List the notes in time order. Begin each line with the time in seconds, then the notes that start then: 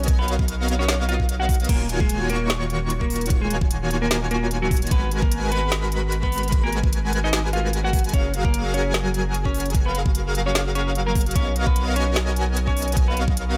Already playing: B1 B3 F#4 A#4 C#5 D#5 G#5
0.04 closed hi-hat
0.08 kick, closed hi-hat
0.19 B3 F#4 A#4 B4 C#5 D#5 F5
0.28 closed hi-hat
0.39 kick
0.48 closed hi-hat
0.68 B3 F#4 A#4 C#5 D#5 F5, closed hi-hat
0.79 C#4 C#5
0.89 snare, closed hi-hat
1.09 F4 F5, closed hi-hat
1.20 kick
1.29 closed hi-hat
1.40 F#4 F#5
1.49 kick, open hi-hat
1.54 closed hi-hat
1.60 closed hi-hat
1.64 closed hi-hat
1.69 D#1 D#3 A#3 F4 F#4 A#4 C#5 G#5, kick, closed hi-hat, crash
1.89 closed hi-hat
2.00 G#3 G#4, kick
2.09 closed hi-hat
2.30 D#3 A#3 F4 F#4 A#4 C#5 C#6, closed hi-hat
2.50 snare, closed hi-hat
2.70 closed hi-hat
2.90 closed hi-hat
3.01 A#3 A#4, kick
3.10 open hi-hat
3.16 closed hi-hat
3.21 closed hi-hat
3.26 closed hi-hat
3.30 kick, closed hi-hat
3.41 D#3 G#3 A#3 F4 F#4 G#4 C#5 G#5
3.50 closed hi-hat
3.61 kick
3.71 closed hi-hat
3.91 D#3 A#3 F4 F#4 C#5 G#5, closed hi-hat
4.02 A#3 A#4
4.11 snare, closed hi-hat
4.31 A#3 A#4, closed hi-hat
4.51 closed hi-hat
4.62 F#3 F#4
4.71 kick, open hi-hat
4.77 closed hi-hat
4.82 closed hi-hat
4.87 closed hi-hat
4.91 G#1 G#3 B3 F#4 A#4 B4 G#5, kick, closed hi-hat
5.11 closed hi-hat
5.22 A#3 A#4, kick
5.32 closed hi-hat
5.52 G#3 B3 F#4 A#4 B4 B5, closed hi-hat
5.72 snare, closed hi-hat
5.92 closed hi-hat
6.12 closed hi-hat
6.23 B3 B4, kick
6.32 open hi-hat
6.38 closed hi-hat
6.43 closed hi-hat
6.48 closed hi-hat
6.52 kick, closed hi-hat
6.63 G#3 A#3 F#4 A#4 B4 G#5
6.73 closed hi-hat
6.84 kick
6.93 closed hi-hat
7.13 G#3 F#4 A#4 B4 G#5, closed hi-hat
7.24 D#4 D#5
7.33 snare, closed hi-hat
7.53 F4 F5, closed hi-hat
7.73 closed hi-hat
7.84 F#4 F#5
7.93 kick, open hi-hat
7.99 closed hi-hat
8.04 closed hi-hat
8.09 closed hi-hat
8.13 F#1 F#3 C#4 F#4 G#4 A#4 C#5 F5, kick, closed hi-hat
8.34 closed hi-hat
8.45 A#3 A#4, kick
8.54 closed hi-hat
8.74 F#3 C#4 F#4 G#4 A#4 C#5 G#5, closed hi-hat
8.94 snare, closed hi-hat
9.14 closed hi-hat
9.34 closed hi-hat
9.45 C#4 C#5, kick
9.54 open hi-hat
9.60 closed hi-hat
9.66 closed hi-hat
9.70 closed hi-hat
9.75 kick, closed hi-hat
9.85 F#3 B3 F#4 G#4 A#4 B4 F5
9.95 closed hi-hat
10.06 kick
10.15 closed hi-hat
10.35 F#3 F#4 G#4 A#4 F5, closed hi-hat
10.46 C#4 C#5
10.55 snare, closed hi-hat
10.75 C#4 C#5, closed hi-hat
10.95 closed hi-hat
11.06 A#3 A#4
11.15 kick, open hi-hat
11.21 closed hi-hat
11.26 closed hi-hat
11.31 closed hi-hat
11.36 B1 B3 C#4 F#4 A#4 C#5 D#5 F5, kick, closed hi-hat
11.56 closed hi-hat
11.67 B3 B4, kick
11.76 closed hi-hat
11.96 B3 C#4 F#4 A#4 C#5 D#5 G#5, closed hi-hat
12.16 snare, closed hi-hat
12.36 closed hi-hat
12.57 closed hi-hat
12.67 C#4 C#5, kick
12.77 open hi-hat
12.82 closed hi-hat
12.88 closed hi-hat
12.92 closed hi-hat
12.97 kick, closed hi-hat
13.08 B3 F#4 A#4 B4 C#5 D#5 F5
13.17 closed hi-hat
13.28 kick
13.37 closed hi-hat